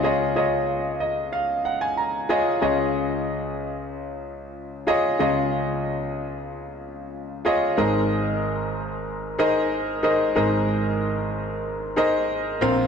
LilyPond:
<<
  \new Staff \with { instrumentName = "Grand piano" } { \time 4/4 \key cis \mixolydian \tempo 4 = 93 << { r4. dis''8 eis''8 fis''16 gis''16 ais''8 gis''8 | r1 | r1 | \key aes \major r1 |
r1 | } \\ { <eis' gis' cis'' dis''>8 <eis' gis' cis'' dis''>2 r4 <eis' gis' cis'' dis''>8 | <eis' gis' cis'' dis''>2 r4. <eis' gis' cis'' dis''>8 | <eis' gis' cis'' dis''>2 r4. <eis' gis' cis'' dis''>8 | <ees' aes' bes' c'' ees''>2 r8 <ees' aes' bes' c'' ees''>4 <ees' aes' bes' c'' ees''>8 |
<ees' aes' bes' c'' ees''>2 r8 <ees' aes' bes' c'' ees''>4 <c' f' bes' c'' f''>8 | } >> }
  \new Staff \with { instrumentName = "Grand piano" } { \clef bass \time 4/4 \key cis \mixolydian <cis, cis>2.~ <cis, cis>8 r8 | <cis, cis>1 | <cis, cis>1 | \key aes \major <aes,, aes,>1 |
<aes,, aes,>2.~ <aes,, aes,>8 <bes,, bes,>8 | }
>>